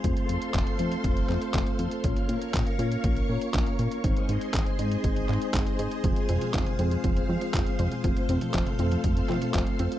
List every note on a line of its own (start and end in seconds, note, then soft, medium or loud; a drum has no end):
0.00 2.00 C6 medium
0.04 0.13 F1 loud
0.04 0.76 A3 medium
0.04 0.76 C4 medium
0.04 0.76 F4 medium
0.04 2.02 A4 medium
0.04 2.02 C5 medium
0.04 0.76 C5 medium
0.04 2.02 F5 medium
0.04 kick loud
0.04 closed hi-hat medium
0.17 closed hi-hat soft
0.29 0.38 F2 medium
0.29 closed hi-hat medium
0.42 closed hi-hat soft
0.54 0.63 F1 loud
0.54 kick loud
0.54 clap loud
0.54 closed hi-hat medium
0.67 closed hi-hat soft
0.79 0.97 F2 medium
0.79 1.26 A3 medium
0.79 1.26 C4 medium
0.79 1.26 F4 medium
0.79 1.26 C5 loud
0.79 closed hi-hat medium
0.92 closed hi-hat soft
1.04 1.22 F1 medium
1.04 kick loud
1.04 closed hi-hat medium
1.17 closed hi-hat soft
1.29 1.38 F2 loud
1.29 2.01 A3 medium
1.29 2.01 C4 medium
1.29 2.01 F4 medium
1.29 2.01 C5 medium
1.29 clap soft
1.42 closed hi-hat soft
1.54 1.63 F1 medium
1.54 kick loud
1.54 clap loud
1.54 closed hi-hat medium
1.67 closed hi-hat soft
1.79 1.88 F2 loud
1.79 closed hi-hat medium
1.91 closed hi-hat soft
2.04 2.13 A#1 loud
2.04 2.76 A#3 medium
2.04 2.76 C#4 medium
2.04 2.76 F4 medium
2.04 4.02 A#4 medium
2.04 4.02 C#5 medium
2.04 2.76 C#5 medium
2.04 4.02 F5 medium
2.04 4.02 C#6 medium
2.04 kick loud
2.04 closed hi-hat medium
2.17 closed hi-hat soft
2.29 2.38 A#2 medium
2.29 closed hi-hat medium
2.42 closed hi-hat soft
2.54 2.63 A#1 loud
2.54 kick loud
2.54 clap loud
2.54 closed hi-hat medium
2.67 closed hi-hat soft
2.79 2.97 A#2 medium
2.79 3.26 A#3 medium
2.79 3.26 C#4 medium
2.79 3.26 F4 medium
2.79 3.26 C#5 loud
2.79 closed hi-hat medium
2.92 closed hi-hat soft
3.04 3.22 A#1 medium
3.04 kick loud
3.04 closed hi-hat medium
3.17 closed hi-hat soft
3.29 3.38 A#2 medium
3.29 4.01 A#3 medium
3.29 4.01 C#4 medium
3.29 4.01 F4 medium
3.29 4.01 C#5 loud
3.41 closed hi-hat soft
3.54 3.63 A#1 loud
3.54 kick loud
3.54 clap loud
3.54 closed hi-hat medium
3.66 closed hi-hat soft
3.79 3.88 A#2 medium
3.79 closed hi-hat medium
3.91 closed hi-hat soft
4.04 4.13 G#1 loud
4.04 4.76 G#3 medium
4.04 4.76 C4 medium
4.04 4.76 D#4 medium
4.04 8.00 G#4 medium
4.04 9.99 C5 medium
4.04 4.76 C5 medium
4.04 6.02 D#5 medium
4.04 8.00 C6 medium
4.04 kick loud
4.04 closed hi-hat medium
4.17 closed hi-hat soft
4.29 4.38 G#2 medium
4.29 closed hi-hat medium
4.41 closed hi-hat soft
4.54 4.63 G#1 loud
4.54 kick loud
4.54 clap loud
4.54 closed hi-hat medium
4.66 closed hi-hat soft
4.79 4.97 G#2 medium
4.79 5.26 G#3 medium
4.79 5.26 C4 medium
4.79 5.26 D#4 medium
4.79 5.26 C5 loud
4.79 closed hi-hat medium
4.92 closed hi-hat soft
5.04 5.22 G#1 medium
5.04 kick loud
5.04 closed hi-hat medium
5.16 closed hi-hat soft
5.29 5.38 G#2 loud
5.29 6.01 G#3 medium
5.29 6.01 C4 medium
5.29 6.01 D#4 medium
5.29 6.01 C5 medium
5.29 clap soft
5.42 closed hi-hat soft
5.54 5.63 G#1 medium
5.54 kick loud
5.54 clap loud
5.54 closed hi-hat medium
5.67 closed hi-hat soft
5.79 5.88 G#2 loud
5.79 closed hi-hat medium
5.91 closed hi-hat soft
6.04 6.13 F1 loud
6.04 6.14 F3 loud
6.04 6.76 G#3 medium
6.04 6.76 C4 medium
6.04 6.76 F4 medium
6.04 6.76 C5 medium
6.04 9.99 F5 medium
6.04 kick loud
6.04 closed hi-hat medium
6.16 closed hi-hat soft
6.29 6.38 F2 medium
6.29 6.39 C4 loud
6.29 closed hi-hat medium
6.29 high tom medium
6.42 6.51 F3 medium
6.42 closed hi-hat soft
6.54 6.63 F1 loud
6.54 6.64 F3 loud
6.54 kick loud
6.54 clap loud
6.54 closed hi-hat medium
6.66 closed hi-hat soft
6.66 high tom medium
6.79 6.97 F2 medium
6.79 7.26 G#3 medium
6.79 7.26 C4 medium
6.79 6.89 C4 medium
6.79 7.26 F4 medium
6.79 7.26 C5 loud
6.79 closed hi-hat medium
6.91 7.01 F3 medium
6.91 closed hi-hat soft
7.04 7.22 F1 medium
7.04 7.14 F3 loud
7.04 kick loud
7.04 closed hi-hat medium
7.17 closed hi-hat soft
7.29 7.38 F2 medium
7.29 8.01 G#3 medium
7.29 8.01 C4 medium
7.29 7.39 C4 loud
7.29 8.01 F4 medium
7.29 8.01 C5 loud
7.41 7.51 F3 medium
7.41 closed hi-hat soft
7.54 7.63 F1 medium
7.54 7.64 F3 loud
7.54 kick loud
7.54 clap loud
7.54 closed hi-hat medium
7.67 closed hi-hat soft
7.79 7.88 F2 medium
7.79 7.89 C4 loud
7.79 closed hi-hat medium
7.79 high tom medium
7.92 8.01 F3 medium
7.92 closed hi-hat soft
8.04 8.13 F1 loud
8.04 8.14 F3 loud
8.04 8.76 A3 medium
8.04 8.76 C4 medium
8.04 8.76 F4 medium
8.04 9.99 A4 medium
8.04 8.76 C5 medium
8.04 9.99 C6 medium
8.04 kick loud
8.04 closed hi-hat medium
8.17 closed hi-hat soft
8.29 8.38 F2 medium
8.29 8.39 C4 loud
8.29 closed hi-hat medium
8.29 high tom medium
8.41 8.51 F3 medium
8.41 closed hi-hat soft
8.54 8.63 F1 loud
8.54 8.64 F3 loud
8.54 kick loud
8.54 clap loud
8.54 closed hi-hat medium
8.67 closed hi-hat soft
8.67 high tom medium
8.79 8.97 F2 medium
8.79 9.26 A3 medium
8.79 9.26 C4 medium
8.79 8.89 C4 loud
8.79 9.26 F4 medium
8.79 9.26 C5 loud
8.79 closed hi-hat medium
8.92 9.01 F3 medium
8.92 closed hi-hat soft
9.04 9.22 F1 medium
9.04 9.14 F3 loud
9.04 kick loud
9.04 closed hi-hat medium
9.17 closed hi-hat soft
9.29 9.38 F2 loud
9.29 9.99 A3 medium
9.29 9.99 C4 medium
9.29 9.39 C4 loud
9.29 9.99 F4 medium
9.29 9.99 C5 medium
9.29 clap soft
9.29 high tom medium
9.42 9.51 F3 medium
9.42 closed hi-hat soft
9.54 9.63 F1 medium
9.54 9.64 F3 loud
9.54 kick loud
9.54 clap loud
9.54 closed hi-hat medium
9.67 closed hi-hat soft
9.79 9.88 F2 loud
9.79 9.89 C4 loud
9.79 closed hi-hat medium
9.92 9.99 F3 medium
9.92 closed hi-hat soft